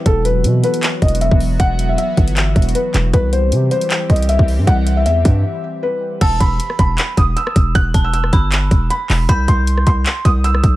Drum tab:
CC |------------------------------------------------|------------------------------------------------|------------------------------------------------|------------------------------------------------|
HH |x-----x-----x-----x--x--x-----x-x-x-x-----o-----|x-----x-----x-----x--x--x-----x-x-x-x-----x-----|x-----x-----x-----x--x--x-----x-x-x-x-----o-----|x-----x-----x-----x-----------------------------|
CP |------------------------x-----------------------|------------------------x-----------------x-----|------------------------x-----------------------|------------------------------------------------|
SD |------------------------------------------------|------------------------------------------------|------------------------------------------------|------------------------------------------------|
BD |o-----------------------------o--------o--------|o-----------------o-----------o-----------------|o-----------------------------o--------o--------|o-----------------o-----------------------------|

CC |x-----------------------------------------------|------------------------------------------------|------------------------------------------------|
HH |x-----x-----x-----x-----x-----x-----x-----x-----|x-----x-----x-----x-----x-----x-----x-----o-----|x-----x-----x-----x-----x-----x-----x-----x-----|
CP |------------------------x-----------------------|------------------------x-----------------x-----|------------------------x-----------------------|
SD |---------------r-----------------------r--------|---------------r--------------------------------|---------------r-----------------------r--------|
BD |o-----o-----------o-----------o-----------o-----|o-----o-----------o-----------o-----------------|o-----o-----------o-----------o-----------o-----|